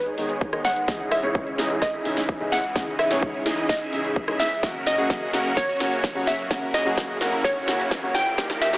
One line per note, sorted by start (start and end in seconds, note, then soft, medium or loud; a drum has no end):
0.00 0.84 D#3 medium
0.00 4.59 G#3 medium
0.00 0.84 B3 medium
0.00 0.84 G#4 medium
0.00 0.67 B4 medium
0.06 0.51 G#1 loud
0.06 0.50 D#4 medium
0.06 0.50 G#4 medium
0.06 0.50 C#5 medium
0.06 closed hi-hat soft
0.17 0.30 B2 medium
0.17 0.30 D#3 medium
0.17 0.30 G#3 medium
0.17 0.31 D#4 medium
0.17 open hi-hat loud
0.29 closed hi-hat soft
0.41 kick loud
0.41 closed hi-hat soft
0.52 0.86 G#2 loud
0.52 0.65 B2 medium
0.52 0.65 D#3 medium
0.52 0.66 G#3 medium
0.52 0.71 D#4 medium
0.52 0.66 D#4 loud
0.52 0.71 G#4 medium
0.52 0.71 C#5 medium
0.52 cross-stick medium
0.52 closed hi-hat soft
0.65 1.13 F#5 loud
0.65 snare medium
0.65 open hi-hat loud
0.76 closed hi-hat soft
0.88 1.21 C#2 loud
0.88 1.20 C#3 medium
0.88 8.34 C#3 medium
0.88 1.20 E3 medium
0.88 4.59 E3 medium
0.88 1.21 G#3 medium
0.88 1.20 C#4 medium
0.88 1.20 D#4 medium
0.88 1.20 E4 medium
0.88 1.20 G#4 medium
0.88 1.20 D#5 medium
0.88 1.21 D#5 medium
0.88 kick loud
0.88 snare medium
0.88 closed hi-hat soft
1.00 closed hi-hat soft
1.11 1.78 E5 medium
1.11 cross-stick medium
1.11 open hi-hat loud
1.23 1.56 C#2 loud
1.23 1.55 C#3 medium
1.23 1.56 E3 medium
1.23 1.56 G#3 medium
1.23 1.56 C#4 medium
1.23 1.56 D#4 medium
1.23 1.56 E4 medium
1.23 1.56 G#4 medium
1.23 1.56 C#5 medium
1.23 closed hi-hat soft
1.35 kick loud
1.35 closed hi-hat medium
1.47 closed hi-hat soft
1.58 1.91 C#2 medium
1.58 1.78 C#3 medium
1.58 1.78 E3 medium
1.58 1.78 G#3 medium
1.58 1.91 C#4 medium
1.58 1.91 D#4 medium
1.58 1.79 D#4 loud
1.58 1.91 E4 medium
1.58 1.91 G#4 medium
1.58 1.91 D#5 medium
1.58 snare medium
1.58 open hi-hat loud
1.70 closed hi-hat soft
1.82 2.54 D#5 loud
1.82 kick loud
1.82 cross-stick medium
1.82 snare medium
1.82 closed hi-hat soft
1.93 2.38 C#2 loud
1.93 2.38 C#4 medium
1.93 2.38 D#4 medium
1.93 2.38 E4 medium
1.93 2.38 G#4 medium
1.93 2.38 E5 medium
1.93 closed hi-hat soft
2.05 2.17 C#3 medium
2.05 2.18 E3 medium
2.05 2.18 G#3 medium
2.05 2.18 D#4 medium
2.05 open hi-hat loud
2.17 snare medium
2.17 closed hi-hat medium
2.29 kick loud
2.29 closed hi-hat soft
2.40 2.73 C#2 medium
2.40 2.53 C#3 medium
2.40 2.53 E3 medium
2.40 2.53 G#3 medium
2.40 2.59 C#4 medium
2.40 2.59 D#4 medium
2.40 2.53 D#4 medium
2.40 2.59 E4 medium
2.40 2.59 G#4 medium
2.40 2.59 E5 medium
2.40 closed hi-hat soft
2.52 2.96 F#5 loud
2.52 snare medium
2.52 open hi-hat loud
2.64 closed hi-hat soft
2.75 3.08 C#2 medium
2.75 3.08 C#3 medium
2.75 3.08 E3 medium
2.75 3.08 G#3 medium
2.75 3.08 C#4 medium
2.75 3.08 D#4 medium
2.75 3.08 E4 medium
2.75 3.08 G#4 medium
2.75 3.08 D#5 medium
2.75 kick loud
2.75 snare medium
2.75 closed hi-hat soft
2.87 closed hi-hat soft
2.99 3.71 E5 loud
2.99 cross-stick medium
2.99 open hi-hat loud
3.10 3.44 C#2 loud
3.10 3.43 C#3 medium
3.10 3.43 E3 medium
3.10 3.43 G#3 medium
3.10 3.43 C#4 medium
3.10 3.43 D#4 medium
3.10 3.43 E4 medium
3.10 3.43 G#4 medium
3.10 3.43 C#5 medium
3.10 3.43 C#5 loud
3.10 snare medium
3.10 closed hi-hat soft
3.22 kick loud
3.22 closed hi-hat soft
3.34 closed hi-hat soft
3.45 3.79 C#2 medium
3.45 3.66 C#3 medium
3.45 3.66 E3 medium
3.45 3.66 G#3 medium
3.45 3.78 C#4 medium
3.45 3.78 D#4 medium
3.45 3.66 D#4 loud
3.45 3.78 E4 medium
3.45 3.78 G#4 medium
3.45 3.78 D#5 medium
3.45 snare medium
3.45 open hi-hat loud
3.58 closed hi-hat soft
3.69 4.42 D#5 loud
3.69 kick loud
3.69 snare medium
3.69 closed hi-hat soft
3.81 4.26 C#2 medium
3.81 4.25 C#4 medium
3.81 4.25 D#4 medium
3.81 4.25 E4 medium
3.81 4.25 G#4 medium
3.81 4.25 E5 loud
3.81 closed hi-hat soft
3.92 4.05 C#3 medium
3.92 4.05 E3 medium
3.92 4.05 G#3 medium
3.92 4.06 D#4 medium
3.92 open hi-hat loud
4.04 closed hi-hat soft
4.16 kick loud
4.16 closed hi-hat soft
4.27 4.61 C#2 medium
4.27 4.40 C#3 medium
4.27 4.40 E3 medium
4.27 4.41 G#3 medium
4.27 4.46 C#4 medium
4.27 4.46 D#4 medium
4.27 4.41 D#4 loud
4.27 4.46 E4 medium
4.27 4.46 G#4 medium
4.27 4.46 E5 medium
4.27 cross-stick medium
4.27 closed hi-hat soft
4.40 4.83 E5 loud
4.40 snare medium
4.40 open hi-hat loud
4.51 open hi-hat medium
4.63 4.96 F#1 loud
4.63 4.95 C#3 medium
4.63 4.95 F#3 medium
4.63 8.34 F#3 medium
4.63 8.78 A#3 medium
4.63 4.96 A#3 medium
4.63 4.95 C#4 medium
4.63 4.95 F#4 medium
4.63 6.49 F#4 medium
4.63 4.96 F#4 medium
4.63 4.95 A#4 medium
4.63 kick loud
4.63 snare medium
4.63 riser medium
4.63 shaker soft
4.75 closed hi-hat soft
4.87 5.59 D#5 loud
4.87 snare medium
4.87 open hi-hat loud
4.87 shaker medium
4.98 5.31 F#1 loud
4.98 5.30 C#3 medium
4.98 5.31 F#3 medium
4.98 5.31 A#3 medium
4.98 5.31 C#4 medium
4.98 5.31 F#4 medium
4.98 5.31 G#4 medium
4.98 closed hi-hat soft
4.98 shaker soft
5.10 kick loud
5.10 snare medium
5.10 closed hi-hat soft
5.10 shaker soft
5.22 closed hi-hat soft
5.33 5.53 C#3 loud
5.33 5.53 F#3 medium
5.33 5.54 A#3 medium
5.33 5.66 C#4 medium
5.33 5.66 F#4 medium
5.33 5.54 F#4 loud
5.33 5.66 A#4 loud
5.33 snare medium
5.33 open hi-hat loud
5.33 shaker medium
5.45 closed hi-hat soft
5.45 shaker soft
5.57 6.23 C#5 loud
5.57 kick loud
5.57 snare medium
5.57 closed hi-hat medium
5.57 shaker soft
5.69 6.13 F#1 loud
5.69 6.13 C#4 medium
5.69 6.13 F#4 medium
5.69 6.13 C#5 medium
5.69 closed hi-hat soft
5.80 5.93 C#3 medium
5.80 5.93 F#3 medium
5.80 5.93 A#3 medium
5.80 5.93 F#4 medium
5.80 snare medium
5.80 open hi-hat loud
5.80 shaker medium
5.92 closed hi-hat soft
5.92 shaker soft
6.04 kick loud
6.04 snare medium
6.04 closed hi-hat soft
6.04 shaker soft
6.15 6.48 F#1 medium
6.15 6.28 C#3 medium
6.15 6.28 F#3 medium
6.15 6.28 A#3 medium
6.15 6.34 C#4 medium
6.15 6.34 F#4 medium
6.15 6.28 F#4 loud
6.15 6.34 C#5 medium
6.15 closed hi-hat soft
6.27 6.75 E5 loud
6.27 snare medium
6.27 open hi-hat loud
6.27 shaker medium
6.39 closed hi-hat soft
6.39 shaker soft
6.50 6.83 C#3 medium
6.50 6.83 F#3 medium
6.50 6.83 A#3 medium
6.50 6.83 C#4 medium
6.50 8.36 E4 medium
6.50 6.83 F#4 medium
6.50 6.83 A#4 medium
6.50 kick loud
6.50 snare medium
6.50 closed hi-hat medium
6.50 shaker soft
6.62 closed hi-hat soft
6.74 7.47 D#5 loud
6.74 snare medium
6.74 open hi-hat loud
6.74 shaker medium
6.85 7.19 F#1 loud
6.85 7.18 C#3 medium
6.85 7.18 F#3 medium
6.85 7.18 A#3 medium
6.85 7.18 C#4 medium
6.85 7.18 F#4 medium
6.85 7.18 F#4 loud
6.85 7.18 G#4 loud
6.85 closed hi-hat medium
6.85 shaker soft
6.98 kick loud
6.98 snare medium
6.98 closed hi-hat medium
6.98 shaker soft
7.09 closed hi-hat soft
7.20 7.54 F#1 loud
7.20 7.41 C#3 medium
7.20 7.41 F#3 medium
7.20 7.41 A#3 medium
7.20 7.53 C#4 medium
7.20 7.53 F#4 medium
7.20 7.41 F#4 loud
7.20 7.53 A#4 medium
7.20 snare medium
7.20 open hi-hat loud
7.20 shaker medium
7.33 closed hi-hat soft
7.33 shaker soft
7.44 8.17 C#5 loud
7.44 kick loud
7.44 snare medium
7.44 closed hi-hat medium
7.44 shaker soft
7.56 8.00 C#4 medium
7.56 8.00 F#4 medium
7.56 8.00 C#5 medium
7.56 closed hi-hat soft
7.67 7.80 C#3 medium
7.67 7.80 F#3 medium
7.67 7.80 A#3 medium
7.67 7.81 F#4 medium
7.67 snare medium
7.67 open hi-hat loud
7.67 shaker medium
7.80 closed hi-hat soft
7.80 shaker soft
7.91 kick loud
7.91 snare medium
7.91 closed hi-hat soft
7.91 shaker soft
8.02 8.36 F#1 medium
8.02 8.15 C#3 medium
8.02 8.15 F#3 medium
8.02 8.16 A#3 medium
8.02 8.21 C#4 medium
8.02 8.21 F#4 medium
8.02 8.16 F#4 loud
8.02 8.21 C#5 medium
8.02 closed hi-hat soft
8.15 8.63 G5 loud
8.15 snare medium
8.15 open hi-hat loud
8.15 shaker medium
8.26 closed hi-hat soft
8.26 shaker soft
8.38 8.71 D#1 loud
8.38 8.70 D#3 medium
8.38 8.78 D#3 medium
8.38 8.70 G3 medium
8.38 8.78 G3 medium
8.38 8.71 A#3 medium
8.38 8.71 D#4 medium
8.38 8.71 G4 medium
8.38 8.78 G4 medium
8.38 8.71 G4 medium
8.38 8.70 A#4 medium
8.38 kick loud
8.38 snare medium
8.38 closed hi-hat medium
8.38 shaker soft
8.50 snare medium
8.50 closed hi-hat soft
8.62 8.78 E5 loud
8.62 snare loud
8.62 open hi-hat loud
8.62 shaker medium
8.73 8.78 D#3 medium
8.73 8.78 G3 medium
8.73 8.78 A#3 medium
8.73 8.78 D#4 medium
8.73 8.78 G4 medium
8.73 8.78 G4 loud
8.73 8.78 A#4 medium
8.73 snare medium
8.73 closed hi-hat medium
8.73 shaker soft